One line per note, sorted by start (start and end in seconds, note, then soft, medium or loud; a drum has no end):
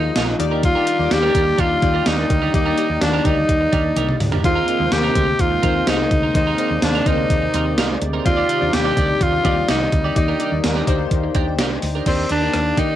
0.00 0.36 D#3 medium
0.00 0.39 D#3 medium
0.00 0.36 F3 medium
0.00 0.38 G#3 medium
0.00 0.39 A#3 medium
0.00 0.10 D#4 medium
0.00 0.36 D#4 medium
0.00 0.39 D#4 medium
0.00 0.36 F4 medium
0.00 0.41 F4 medium
0.00 0.41 G#4 medium
0.00 0.41 D#5 medium
0.04 muted clean electric guitar stroke soft
0.16 0.33 A#1 medium
0.16 0.34 D#4 medium
0.16 0.28 F4 medium
0.16 0.27 A#4 medium
0.16 snare loud
0.16 closed hi-hat medium
0.28 muted clean electric guitar stroke soft
0.39 0.74 D#2 medium
0.39 1.07 D#3 medium
0.39 4.40 D#3 medium
0.39 4.41 G3 medium
0.39 0.87 A#3 medium
0.39 4.41 A#3 medium
0.39 0.87 D#4 medium
0.39 6.31 D#4 medium
0.39 0.87 G4 medium
0.39 0.87 D5 loud
0.39 muted clean electric guitar stroke soft
0.39 closed hi-hat medium
0.51 0.62 D4 medium
0.51 0.63 G4 medium
0.51 0.63 A#4 medium
0.63 1.14 F4 loud
0.63 kick loud
0.63 closed hi-hat medium
0.75 0.86 D4 medium
0.75 0.87 G4 medium
0.75 0.87 A#4 medium
0.87 1.01 D4 medium
0.87 0.98 G4 medium
0.87 0.97 A#4 medium
0.87 closed hi-hat medium
0.99 1.08 D#2 loud
0.99 1.56 A#3 medium
0.99 1.56 D#4 medium
0.99 1.56 G4 medium
0.99 1.56 D5 medium
0.99 muted clean electric guitar stroke soft
1.11 1.28 D#2 loud
1.11 1.62 G4 loud
1.11 muted clean electric guitar stroke soft
1.11 snare loud
1.11 closed hi-hat medium
1.23 1.33 D4 medium
1.23 1.34 G4 medium
1.23 1.35 A#4 medium
1.34 1.52 D#2 medium
1.34 1.49 D4 medium
1.34 1.46 G4 medium
1.34 1.45 A#4 medium
1.34 kick medium
1.34 closed hi-hat medium
1.46 muted clean electric guitar stroke soft
1.58 1.76 D#2 loud
1.58 1.76 D4 medium
1.58 2.09 F4 loud
1.58 1.70 G4 medium
1.58 1.69 A#4 medium
1.58 kick medium
1.58 closed hi-hat medium
1.70 muted clean electric guitar stroke medium
1.82 2.00 D#2 medium
1.82 2.31 A#3 medium
1.82 2.31 D#4 medium
1.82 2.31 G4 medium
1.82 2.31 D5 medium
1.82 muted clean electric guitar stroke soft
1.82 kick medium
1.82 closed hi-hat medium
1.94 2.05 D4 soft
1.94 2.06 G4 medium
1.94 2.06 A#4 medium
2.06 2.24 D#2 loud
2.06 2.24 D4 medium
2.06 2.54 D#4 medium
2.06 2.18 G4 medium
2.06 2.17 A#4 medium
2.06 snare loud
2.06 closed hi-hat medium
2.18 muted clean electric guitar stroke medium
2.29 2.47 D2 medium
2.29 2.97 D#3 medium
2.29 muted clean electric guitar stroke soft
2.29 kick loud
2.29 closed hi-hat medium
2.42 2.53 D4 medium
2.42 2.53 G4 medium
2.42 2.53 A#4 medium
2.53 2.71 D#2 loud
2.53 2.70 A#3 medium
2.53 2.70 D#4 medium
2.53 3.03 D#4 medium
2.53 2.70 G4 medium
2.53 2.70 D5 medium
2.53 kick loud
2.53 closed hi-hat medium
2.66 2.76 D4 medium
2.66 2.77 G4 medium
2.66 2.77 A#4 medium
2.77 3.10 A#3 medium
2.77 2.92 D4 medium
2.77 3.10 D#4 medium
2.77 3.10 G4 medium
2.77 2.89 G4 medium
2.77 2.88 A#4 medium
2.77 3.10 D5 medium
2.77 closed hi-hat medium
2.90 2.98 D#2 medium
2.90 muted clean electric guitar stroke soft
3.01 3.19 D#2 medium
3.01 3.27 D4 medium
3.01 muted clean electric guitar stroke soft
3.01 snare loud
3.01 closed hi-hat medium
3.13 3.24 D4 medium
3.13 3.25 G4 medium
3.13 3.25 A#4 medium
3.24 3.42 D2 medium
3.24 3.90 A#3 medium
3.24 3.39 D4 medium
3.24 3.90 D#4 medium
3.24 4.21 D#4 medium
3.24 3.90 G4 medium
3.24 3.37 G4 medium
3.24 3.36 A#4 medium
3.24 3.90 D5 medium
3.24 kick medium
3.24 closed hi-hat medium
3.37 muted clean electric guitar stroke medium
3.49 3.66 D#2 loud
3.49 kick medium
3.49 closed hi-hat medium
3.61 muted clean electric guitar stroke soft
3.72 3.90 D#2 loud
3.72 3.91 D4 medium
3.72 3.84 G4 medium
3.72 3.83 A#4 medium
3.72 kick medium
3.72 closed hi-hat medium
3.85 muted clean electric guitar stroke soft
3.96 4.14 C2 medium
3.96 4.15 D4 medium
3.96 4.08 G4 medium
3.96 4.07 A#4 medium
3.96 closed hi-hat medium
3.96 high tom medium
4.08 muted clean electric guitar stroke soft
4.08 mid tom medium
4.20 4.37 D2 medium
4.20 muted clean electric guitar stroke soft
4.20 mid tom medium
4.20 open hi-hat medium
4.32 4.43 D4 medium
4.32 4.44 G4 medium
4.32 4.43 A#4 medium
4.32 floor tom medium
4.43 4.61 D#2 medium
4.43 10.12 C3 medium
4.43 5.12 D#3 medium
4.43 8.22 G#3 medium
4.43 4.68 A#3 medium
4.43 8.22 A#3 medium
4.43 4.68 D#4 medium
4.43 4.94 F4 loud
4.43 4.69 G#4 medium
4.43 4.69 C5 medium
4.43 kick loud
4.43 closed hi-hat medium
4.56 4.66 C4 medium
4.56 4.67 D#4 medium
4.56 4.68 A#4 medium
4.67 4.82 C4 medium
4.67 4.79 D#4 medium
4.67 4.78 A#4 medium
4.67 closed hi-hat medium
4.79 4.89 D#2 medium
4.79 5.37 G#3 medium
4.79 5.36 A#3 medium
4.79 5.36 D#4 medium
4.79 4.86 A#4 medium
4.79 muted clean electric guitar stroke soft
4.86 5.40 C5 medium
4.91 5.09 D#2 loud
4.91 5.42 G4 loud
4.91 muted clean electric guitar stroke soft
4.91 snare loud
4.91 closed hi-hat medium
5.03 5.14 C4 medium
5.03 5.15 D#4 medium
5.03 5.15 A#4 medium
5.15 5.33 D2 medium
5.15 5.30 C4 medium
5.15 5.27 D#4 medium
5.15 5.26 A#4 medium
5.15 kick medium
5.15 closed hi-hat medium
5.28 muted clean electric guitar stroke soft
5.39 5.57 D#2 medium
5.39 5.90 F4 loud
5.39 kick medium
5.39 closed hi-hat medium
5.51 muted clean electric guitar stroke soft
5.63 5.80 D#2 loud
5.63 6.12 A#3 medium
5.63 5.81 C4 medium
5.63 6.12 D#4 medium
5.63 5.75 D#4 medium
5.63 6.12 G#4 medium
5.63 5.74 A#4 loud
5.63 6.12 C5 medium
5.63 kick medium
5.63 closed hi-hat medium
5.75 muted clean electric guitar stroke medium
5.87 6.04 C2 medium
5.87 6.05 C4 medium
5.87 5.99 D#4 medium
5.87 6.35 D#4 medium
5.87 5.98 A#4 medium
5.87 snare loud
5.87 closed hi-hat medium
5.99 muted clean electric guitar stroke soft
6.11 6.28 D2 medium
6.11 muted clean electric guitar stroke soft
6.11 kick loud
6.11 closed hi-hat medium
6.23 6.34 C4 medium
6.23 6.34 D#4 medium
6.23 6.35 A#4 medium
6.34 6.52 D#2 loud
6.34 7.02 D#3 medium
6.34 6.50 A#3 medium
6.34 6.51 D#4 medium
6.34 6.85 D#4 medium
6.34 6.51 G#4 medium
6.34 6.51 C5 medium
6.34 10.12 D5 medium
6.34 muted clean electric guitar stroke soft
6.34 kick loud
6.34 closed hi-hat medium
6.47 6.58 C4 medium
6.47 6.59 D#4 medium
6.47 6.59 A#4 medium
6.58 6.91 A#3 medium
6.58 6.73 C4 medium
6.58 6.91 D#4 medium
6.58 6.71 D#4 medium
6.58 6.91 G#4 medium
6.58 6.70 A#4 medium
6.58 6.91 C5 medium
6.58 closed hi-hat medium
6.71 6.79 D#2 medium
6.71 muted clean electric guitar stroke soft
6.82 7.00 D#2 loud
6.82 7.08 D4 medium
6.82 muted clean electric guitar stroke soft
6.82 snare loud
6.82 closed hi-hat medium
6.95 7.05 C4 medium
6.95 7.06 D#4 medium
6.95 7.07 A#4 medium
7.06 7.23 D2 medium
7.06 7.71 A#3 medium
7.06 7.21 C4 medium
7.06 7.71 D#4 medium
7.06 8.02 D#4 medium
7.06 7.18 D#4 medium
7.06 7.71 G#4 medium
7.06 7.12 A#4 medium
7.06 7.17 A#4 medium
7.06 kick medium
7.06 closed hi-hat medium
7.12 7.74 C5 medium
7.18 muted clean electric guitar stroke soft
7.30 7.47 D#2 loud
7.30 kick medium
7.30 closed hi-hat medium
7.42 muted clean electric guitar stroke soft
7.54 7.78 D#2 medium
7.54 7.72 C4 medium
7.54 7.66 D#4 medium
7.54 7.65 A#4 loud
7.54 closed hi-hat medium
7.66 muted clean electric guitar stroke medium
7.78 7.95 C2 loud
7.78 7.96 C4 medium
7.78 7.90 D#4 medium
7.78 7.89 A#4 medium
7.78 snare loud
7.78 closed hi-hat medium
7.90 muted clean electric guitar stroke soft
8.02 8.19 D2 medium
8.02 muted clean electric guitar stroke soft
8.02 closed hi-hat medium
8.13 8.25 C4 medium
8.13 8.24 D#4 medium
8.13 8.26 A#4 medium
8.25 8.43 D#2 loud
8.25 10.14 D#3 medium
8.25 8.93 D#3 medium
8.25 12.03 G3 medium
8.25 8.49 C4 medium
8.25 8.50 D#4 medium
8.25 8.75 F4 loud
8.25 8.50 G4 medium
8.25 8.50 D5 medium
8.25 muted clean electric guitar stroke soft
8.25 kick loud
8.25 closed hi-hat medium
8.37 8.48 D#4 medium
8.37 8.48 G4 medium
8.37 8.49 D5 medium
8.49 8.63 D#4 medium
8.49 8.61 G4 medium
8.49 8.60 D5 medium
8.49 closed hi-hat medium
8.60 8.70 D#2 medium
8.60 9.17 C4 medium
8.60 8.67 D4 medium
8.60 9.18 G4 medium
8.60 9.18 D5 medium
8.60 muted clean electric guitar stroke medium
8.66 9.20 D#4 medium
8.73 8.90 D#2 loud
8.73 9.24 G4 loud
8.73 muted clean electric guitar stroke soft
8.73 snare loud
8.73 closed hi-hat medium
8.85 8.96 D#4 medium
8.85 8.96 G4 medium
8.85 8.97 D5 medium
8.97 9.14 D2 medium
8.97 9.11 D#4 medium
8.97 9.09 G4 medium
8.97 9.07 D5 medium
8.97 kick medium
8.97 closed hi-hat medium
9.09 muted clean electric guitar stroke soft
9.21 9.38 D#2 medium
9.21 9.69 F4 loud
9.21 kick medium
9.21 closed hi-hat medium
9.32 muted clean electric guitar stroke medium
9.44 9.62 D#2 loud
9.44 9.93 C4 medium
9.44 9.93 D#4 medium
9.44 9.63 D#4 medium
9.44 9.93 G4 medium
9.44 9.56 G4 medium
9.44 9.93 D5 medium
9.44 9.55 D5 loud
9.44 kick medium
9.44 closed hi-hat medium
9.56 muted clean electric guitar stroke soft
9.68 9.86 C2 medium
9.68 9.86 D#4 medium
9.68 10.13 D#4 medium
9.68 9.80 G4 medium
9.68 9.79 D5 medium
9.68 snare loud
9.68 closed hi-hat medium
9.80 muted clean electric guitar stroke medium
9.92 10.09 D2 medium
9.92 muted clean electric guitar stroke soft
9.92 kick loud
9.92 closed hi-hat medium
10.04 10.17 D#4 medium
10.04 10.16 G4 medium
10.04 10.18 D5 medium
10.15 10.33 D#2 loud
10.15 12.04 D#3 medium
10.15 10.83 D#3 medium
10.15 10.32 A#3 medium
10.15 12.05 A#3 medium
10.15 10.32 D#4 medium
10.15 12.05 D#4 medium
10.15 10.61 D#4 medium
10.15 10.32 G4 medium
10.15 10.32 D5 medium
10.15 muted clean electric guitar stroke soft
10.15 kick loud
10.15 closed hi-hat medium
10.28 10.39 D4 medium
10.28 10.40 G4 medium
10.28 10.40 A#4 medium
10.39 10.72 A#3 medium
10.39 10.54 D4 medium
10.39 10.72 D#4 medium
10.39 10.72 G4 medium
10.39 10.52 G4 medium
10.39 10.51 A#4 medium
10.39 10.72 D5 medium
10.39 closed hi-hat medium
10.52 10.61 D#2 medium
10.52 muted clean electric guitar stroke soft
10.64 10.81 D#2 medium
10.64 muted clean electric guitar stroke soft
10.64 snare loud
10.64 closed hi-hat medium
10.76 10.87 D4 medium
10.76 10.87 G4 medium
10.76 10.88 A#4 medium
10.87 11.05 D2 medium
10.87 11.52 A#3 medium
10.87 11.02 D4 medium
10.87 11.52 D#4 medium
10.87 11.52 G4 medium
10.87 10.99 G4 medium
10.87 10.99 A#4 medium
10.87 11.52 C5 loud
10.87 kick medium
10.87 closed hi-hat medium
11.00 muted clean electric guitar stroke medium
11.11 11.28 D#2 medium
11.11 kick medium
11.11 closed hi-hat medium
11.24 muted clean electric guitar stroke soft
11.35 11.59 D#2 medium
11.35 11.53 D4 medium
11.35 11.48 G4 loud
11.35 11.46 A#4 medium
11.35 11.57 G5 medium
11.35 kick medium
11.35 closed hi-hat medium
11.47 muted clean electric guitar stroke soft
11.59 11.76 C2 medium
11.59 11.77 D4 medium
11.59 11.71 G4 loud
11.59 11.70 A#4 loud
11.59 12.03 D#5 medium
11.59 snare loud
11.59 closed hi-hat medium
11.72 muted clean electric guitar stroke soft
11.82 12.00 D2 medium
11.82 muted clean electric guitar stroke soft
11.82 open hi-hat medium
11.95 12.05 D4 medium
11.95 12.06 G4 medium
11.95 12.07 A#4 medium
12.06 12.23 D#2 medium
12.06 12.74 D#3 medium
12.06 12.30 A#3 medium
12.06 12.29 C4 medium
12.06 12.25 D4 medium
12.06 12.30 D#4 medium
12.06 12.31 G4 medium
12.06 12.25 G4 medium
12.06 12.25 A#4 medium
12.06 12.31 D5 medium
12.06 kick medium
12.06 closed hi-hat medium
12.06 crash medium
12.29 12.48 D#2 medium
12.29 12.42 D4 medium
12.29 12.80 D4 medium
12.29 12.42 G4 medium
12.29 12.41 A#4 medium
12.29 closed hi-hat medium
12.41 12.66 A#3 medium
12.41 12.53 D4 soft
12.41 12.66 D#4 medium
12.41 12.66 G4 medium
12.41 12.54 G4 medium
12.41 12.54 A#4 medium
12.41 12.66 D5 medium
12.54 12.71 D#2 medium
12.54 cross-stick medium
12.54 closed hi-hat medium
12.66 muted clean electric guitar stroke soft
12.77 12.95 D#3 medium
12.77 12.96 A#3 medium
12.77 12.90 D4 medium
12.77 12.96 D#4 medium
12.77 12.96 D#4 loud
12.77 12.96 G4 medium
12.77 12.89 G4 medium
12.77 12.89 A#4 medium
12.77 12.96 D5 medium
12.77 kick medium
12.77 closed hi-hat medium
12.90 12.96 D4 soft
12.90 12.96 G4 medium
12.90 12.96 A#4 medium